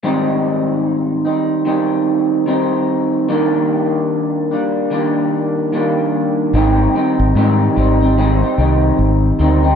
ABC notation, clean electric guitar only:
X:1
M:4/4
L:1/16
Q:"Swing 16ths" 1/4=74
K:Ablyd
V:1 name="Clean electric guitar"
[A,,E,G,CE]6 [G,CE]2 [E,G,CE]4 [E,G,CE]4 | [E,G,B,D]6 [G,B,D]2 [E,G,B,D]4 [E,G,B,D]4 | [A,,E,G,CE]2 [E,G,CE]2 [A,,E,G,CE]2 [E,G,CE] [G,CE] [A,,E,G,CE] [G,CE] [E,G,CE]4 [E,G,CE] [G,CE] |]